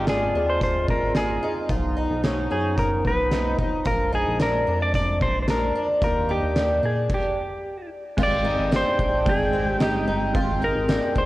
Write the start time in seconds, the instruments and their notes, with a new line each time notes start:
Already playing: analog synth bass G#1, woodwind section G#3 C4 F4
0.07 twelve-string acoustic guitar D4, clean electric guitar G#4, snare, closed hi-hat
0.34 analog synth bass D#2, twelve-string acoustic guitar D4
0.49 clean electric guitar C5
0.61 clean electric guitar C5, kick, closed hi-hat
0.88 analog synth bass G#1, twelve-string acoustic guitar C4, clean electric guitar A#4, kick
1.15 twelve-string acoustic guitar D#4, clean electric guitar G#4, snare, closed hi-hat
1.43 twelve-string acoustic guitar D#4
1.69 analog synth bass B1, woodwind section F3 B3 D#4, twelve-string acoustic guitar F4, kick, closed hi-hat
1.97 twelve-string acoustic guitar D#4
2.10 analog synth bass B1
2.24 twelve-string acoustic guitar C#4, snare, closed hi-hat
2.50 analog synth bass F#2, twelve-string acoustic guitar C#4, clean electric guitar G#4
2.78 clean electric guitar A#4, kick, closed hi-hat
3.05 analog synth bass B1, twelve-string acoustic guitar B3, clean electric guitar B4, kick
3.31 twelve-string acoustic guitar D#4, snare, closed hi-hat
3.59 twelve-string acoustic guitar D#4, kick
3.85 analog synth bass A#1, woodwind section G#3 D4, twelve-string acoustic guitar F4, clean electric guitar A#4, kick, closed hi-hat
4.12 twelve-string acoustic guitar D#4, clean electric guitar G#4
4.27 analog synth bass A#1
4.39 twelve-string acoustic guitar D4, clean electric guitar A#4, snare, closed hi-hat
4.67 analog synth bass F2, twelve-string acoustic guitar D4
4.82 clean electric guitar D5
4.94 clean electric guitar D5, kick, closed hi-hat
5.21 analog synth bass A#1, twelve-string acoustic guitar C4, clean electric guitar C5, kick
5.42 clean electric guitar C5
5.48 twelve-string acoustic guitar D4, clean electric guitar A#4, snare, closed hi-hat
5.75 twelve-string acoustic guitar D4
6.02 analog synth bass D#2, woodwind section D#3 A#3 G4, twelve-string acoustic guitar F4, clean electric guitar A#4, kick, closed hi-hat
6.29 twelve-string acoustic guitar D#4, clean electric guitar G4
6.43 analog synth bass D#2
6.56 twelve-string acoustic guitar D4, snare, closed hi-hat
6.83 analog synth bass A#2, twelve-string acoustic guitar D4, clean electric guitar G#4
7.10 kick, crash
7.14 clean electric guitar G4
8.17 analog synth bass G#1, clean electric guitar G#3 C4 D#4 G4, woodwind section G#3 C4 G5, twelve-string acoustic guitar F4, kick, crash
8.23 clean electric guitar D5
8.44 clean electric guitar C4 D#4 G4, twelve-string acoustic guitar D#4
8.59 analog synth bass G#1
8.72 twelve-string acoustic guitar D4, snare, ride, tambourine
8.76 clean electric guitar C5
8.99 analog synth bass A#1, twelve-string acoustic guitar D4, kick
9.25 analog synth bass G#1, clean electric guitar G#3 C4 D#4 G#4, kick, ride
9.53 twelve-string acoustic guitar C4
9.69 clean electric guitar G4
9.80 analog synth bass G1, clean electric guitar G#3 C4 D#4 G4, twelve-string acoustic guitar D#4, snare, ride, tambourine
9.84 clean electric guitar G4
10.07 analog synth bass G1, twelve-string acoustic guitar D#4
10.33 analog synth bass G#1, clean electric guitar G#3 C4 D#4 G4, twelve-string acoustic guitar F4, kick, ride
10.60 twelve-string acoustic guitar D#4, clean electric guitar D#4 G4 A#4
10.75 analog synth bass G#1
10.88 twelve-string acoustic guitar D4, snare, ride, tambourine
11.15 analog synth bass A#1, twelve-string acoustic guitar D4, clean electric guitar C5, kick